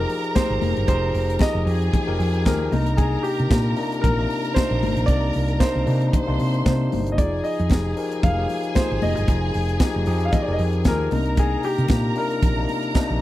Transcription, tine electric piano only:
Already playing: F3 D#4 G4 G#4 A#4
0.34 F3 D#4 G4 G#4
0.87 F3 D#4 G4 G#4
1.40 F3 D#4 G4 G#4
1.65 F3 D#4 G4 G#4
2.06 F3 D#4 G4 A#4
2.45 F3 D#4 G4 G#4
2.71 C3 A#3 D4 D#4
3.50 C3 A#3 D4 F4
3.76 C3 A#3 D4 D#4
4.18 C3 A#3 D4 D#4
4.55 C3 A#3 D4 D#4
5.08 C3 A#3 D4 D#4
5.60 C3 A#3 D4 D#4
5.86 C3 A#3 D4 D#4
6.27 C3 A#3 D4 D#4
6.64 C3 A#3 D4 D#4
7.18 F3 D#4 F4 G#4
7.70 F3 D#4 G4 G#4
7.97 F3 D#4 G4 A#4
8.37 F3 D#4 G4 G#4
8.75 F3 D#4 F4 G#4
9.27 F3 D#4 F4 G#4
9.80 F3 D#4 G4 G#4
10.06 F3 D#4 G4 G#4
10.47 F3 D#4 G4 A#4
10.85 F3 D#4 G4 G#4
11.11 C3 A#3 D4 D#4
11.89 C3 A#3 D4 F4
12.15 C3 A#3 D4 D#4
12.56 C3 A#3 D4 D#4
12.94 C3 A#3 D4 D#4

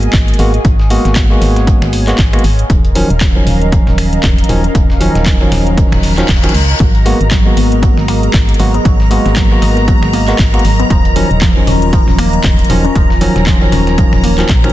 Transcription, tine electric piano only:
Already playing: G#3 A#3 B3 F#4
0.39 G#3 A#3 B3 F#4
0.90 G#3 A#3 B3 F#4
1.30 G#3 A#3 B3 F#4
2.07 G#3 A#3 B3 F#4
2.33 G#3 A#3 B3 F#4
2.95 D#3 F3 F#3 C#4
3.35 D#3 F3 F#3 C#4
4.49 D#3 F3 F#3 C#4
5.00 D#3 F3 F#3 C#4
5.40 D#3 F3 F#3 C#4
6.18 D#3 F3 F#3 C#4
6.43 D#3 F3 F#3 C#4
7.05 G#3 A#3 B3 F#4
7.45 G#3 A#3 B3 F#4
8.59 G#3 A#3 B3 F#4
9.11 G#3 A#3 B3 F#4
9.51 G#3 A#3 B3 F#4
10.28 G#3 A#3 B3 F#4
10.53 G#3 A#3 B3 F#4
11.16 D#3 F3 F#3 C#4
11.56 D#3 F3 F#3 C#4
12.69 D#3 F3 F#3 C#4
13.21 D#3 F3 F#3 C#4
13.61 D#3 F3 F#3 C#4
14.38 D#3 F3 F#3 C#4
14.64 D#3 F3 F#3 C#4

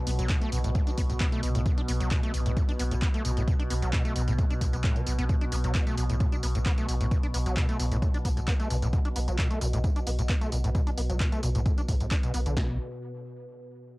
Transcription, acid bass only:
0.07 B3
0.19 F#3
0.29 B2
0.42 A3
0.52 B2
0.64 A2
0.75 A2
0.87 D4
0.98 B3
1.10 A2
1.20 B3
1.32 A3
1.43 B2
1.55 A2
1.66 B2
1.78 D4
1.88 B3
2.00 F#3
2.11 B2
2.23 A3
2.34 B2
2.46 A2
2.57 A2
2.69 D4
2.79 B3
2.91 A2
3.02 B3
3.14 A3
3.25 B2
3.37 A2
3.47 B2
3.59 D4
3.70 B3
3.82 F#3
3.93 B2
4.05 A3
4.16 B2
4.28 A2
4.39 A2
4.51 D4
4.61 B2
4.73 B3
4.84 A2
4.96 B2
5.07 B2
5.19 B3
5.30 B2
5.42 D4
5.52 B3
5.64 F#3
5.75 B2
5.87 A3
5.98 B2
6.10 A2
6.20 A2
6.32 D4
6.43 B3
6.55 A2
6.66 B3
6.78 A3
6.89 B2
7.01 A2
7.11 B2
7.23 D4
7.34 B3
7.46 F#3
7.57 B2
7.69 A3
7.79 B2
7.91 A2
8.02 A2
8.14 D4
8.25 B3
8.37 A2
8.48 B3
8.60 A3
8.70 B2
8.82 A2
8.93 B2
9.05 D4
9.16 B3
9.28 F#3
9.39 B2
9.51 A3
9.61 B2
9.73 A2
9.84 A2
9.96 D4
10.07 B3
10.19 A2
10.29 B3
10.41 A3
10.52 B2
10.64 A2
10.75 B2
10.87 D4
10.98 B3
11.10 F#3
11.20 B2
11.32 A3
11.43 B2
11.55 A2
11.66 A2
11.78 D4
11.88 A2
12.01 A2
12.11 D4
12.23 B2
12.34 B3
12.46 D3
12.57 B2

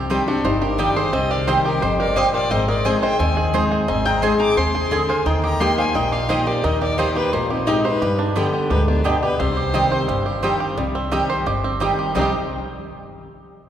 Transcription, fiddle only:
0.27 F#4
0.44 G4
0.62 A#4
0.78 D5
0.97 C5
1.13 D#5
1.31 D5
1.47 C5
1.65 A#4
1.82 C5
1.99 D5
2.16 F5
2.33 D5
2.51 D#5
2.68 D5
2.85 D#5
3.02 G5
3.19 G#5
3.88 G#5
4.06 A#5
4.22 C6
4.40 D6
4.57 C6
5.09 G#5
5.26 G5
5.43 A#5
5.60 C6
5.78 G#5
5.95 G5
6.12 F5
6.29 D#5
6.47 D5
6.64 D#5
6.82 D5
6.98 C5
7.16 B4
7.33 A#4
7.50 D#4
7.67 G4
7.84 B4
8.70 B4
8.88 D4
9.04 G4
9.22 B4
9.39 C5
12.15 C5

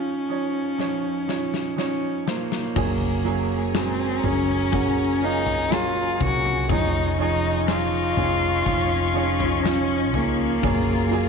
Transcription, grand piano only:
Already playing: F2 F3 D#4 F4 G#4 C#5
0.29 F3 D#4 C#5
0.78 F3 D#4 C#5
1.27 F3 D#4 C#5
1.77 F3 D#4 C#5
2.26 F3 D#4 C5
2.76 C#3 F#3 A#3 C#4 G#4
3.25 F#3 A#3 C#4 G#4
3.74 F#3 G#3 A#3 G#4
4.23 F#3 A#3 C#4 G#4
4.72 F#3 A#3 C#4 F#4
5.22 F#3 A#3 C#4 F4
5.70 F#3 A#3 C#4 G#4
6.20 F#3 A#3 C#4 G#4
6.69 F3 C#4 D#4 G#4
7.19 F3 C#4 D#4 G#4
7.68 F3 C#4 D#4 G#4
8.16 F3 C#4 D#4 G#4
8.65 F3 C#4 D#4 F4
9.14 F3 C#4 D#4 G#4
9.63 F3 C#4 D#4 F4
10.13 F3 C#4 D#4 G#4
10.63 C#3 F#3 A#3 C#4 G#4
11.11 F#3 A#3 C#4 G#4

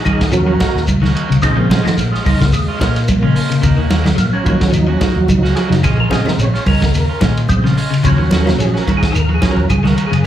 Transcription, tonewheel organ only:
0.05 D#4 G#4
0.31 F3 F#3 C#4 F#4 A#4
1.41 C#3 G#3 C4 D#4
1.58 A#3
1.71 G#3
1.85 D#4
1.97 A#3
2.12 G#3
2.25 D#4
2.40 A#3
2.53 G#3
2.81 A#3
4.18 A#3
4.33 C#4
4.44 F3 F#3 A#3 C#4
4.60 C#4
4.72 D#4
4.88 C#4
5.01 D#4
5.18 F#4
5.28 D#4
5.44 F#4
5.55 G#4
5.71 D#4
5.84 G#4
6.00 A#4
6.10 C#3 G#3 C4 G#4
6.28 A#4
6.40 C#5
6.68 A#4
7.48 C#3 G#3 C4
8.04 F3 F#3 C#4
8.38 A4
8.43 A#4
8.60 G#4
8.78 A#4
8.97 G#4
9.10 A4
9.15 A#4
9.34 G#4
9.43 F3 F#3 C#4
9.51 A#4
9.70 G#4
9.83 A4
9.87 A#4
10.06 G#4

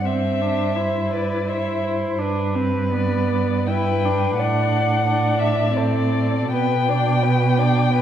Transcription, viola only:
0.04 C4
0.41 D4
0.76 E4
1.46 E4
2.18 D4
2.55 C4
2.91 B3
3.68 E4
4.05 D4
4.39 D4
5.08 D4
5.74 C4
6.52 B3
6.89 D4
7.24 B3
7.58 D4
7.93 B3

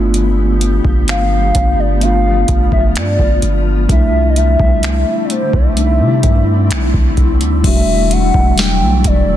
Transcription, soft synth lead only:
1.09 F5
1.80 D5
2.03 F5
2.73 E5
2.97 D5
3.91 E5
4.30 D#5
4.37 E5
5.25 D5
5.31 C5
5.54 E5
7.65 E5
8.13 F#5
8.60 G5
9.07 D5

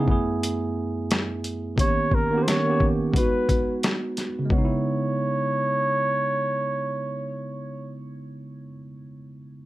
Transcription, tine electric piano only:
0.05 F#2 A3 B3
0.10 E4 G#4
1.76 D#3 A#3 B3
1.81 C#4 G4
2.31 D#3 A#3 B3
2.36 C#4 G4
2.65 D#3 A#3 B3
2.69 C#4 G4
3.12 G#3 B3
3.17 D#4 F#4
4.39 C#3
4.46 G#3
4.52 B3
4.58 D#4
4.65 E4

